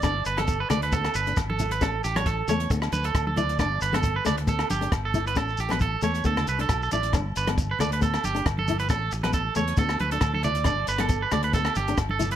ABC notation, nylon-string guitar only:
X:1
M:4/4
L:1/16
Q:"Swing 16ths" 1/4=136
K:G
V:1 name="Nylon-string guitar"
D2 z B,2 z A,2 B,2 z D2 z E2 | ^C2 z G,2 z A,2 B,2 z4 E2 | D2 z B,2 z A,2 B,2 z D2 z E2 | ^C2 z B,2 z A,2 B,2 z D2 z E2 |
D2 z B,2 z A,2 B,2 z D2 z E2 | ^C2 z B,2 z A,2 B,2 z D2 z E2 | D2 z B,2 z A,2 B,2 z D2 z E2 |]